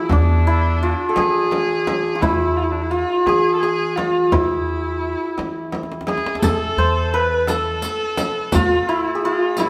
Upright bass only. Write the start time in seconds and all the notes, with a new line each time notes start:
Already playing: E3
0.12 E2
1.17 E3
2.21 E2
3.27 E3
4.33 E2
5.38 E3
6.43 A2
6.77 E2
8.54 A2